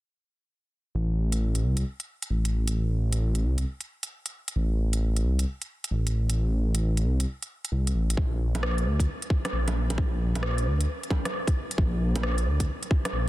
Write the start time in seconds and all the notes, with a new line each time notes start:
0.95 A1
1.32 closed hi-hat
1.55 closed hi-hat
1.62 C2
1.77 closed hi-hat
2.00 closed hi-hat
2.22 closed hi-hat
2.30 A1
2.45 closed hi-hat
2.68 closed hi-hat
3.13 closed hi-hat
3.35 closed hi-hat
3.44 C2
3.58 closed hi-hat
3.81 closed hi-hat
4.03 closed hi-hat
4.26 closed hi-hat
4.48 closed hi-hat
4.56 A1
4.93 closed hi-hat
5.16 closed hi-hat
5.23 C2
5.39 closed hi-hat
5.62 closed hi-hat
5.84 closed hi-hat
5.91 A1
6.07 closed hi-hat
6.30 closed hi-hat
6.75 closed hi-hat
6.97 closed hi-hat
7.04 C2
7.20 closed hi-hat
7.42 closed hi-hat
7.65 closed hi-hat
7.72 C2
7.87 closed hi-hat
7.95 A1
8.10 closed hi-hat
8.17 A#1, kick
8.55 closed hi-hat, low bongo
8.63 cross-stick
8.78 closed hi-hat
8.85 D2
9.00 kick, closed hi-hat
9.22 closed hi-hat
9.30 kick
9.45 cross-stick, closed hi-hat, low bongo
9.53 A#1
9.68 closed hi-hat, low bongo
9.90 closed hi-hat, low bongo
9.98 kick
10.36 closed hi-hat, low bongo
10.43 cross-stick
10.58 closed hi-hat
10.66 D2
10.81 closed hi-hat
11.03 closed hi-hat
11.10 kick, low bongo
11.25 cross-stick, closed hi-hat, low bongo
11.47 kick, closed hi-hat
11.71 closed hi-hat
11.78 A#1, kick
12.16 closed hi-hat, low bongo
12.23 cross-stick
12.38 closed hi-hat
12.46 D2
12.60 kick, closed hi-hat
12.83 closed hi-hat
12.91 kick
13.05 cross-stick, closed hi-hat, low bongo
13.13 A#1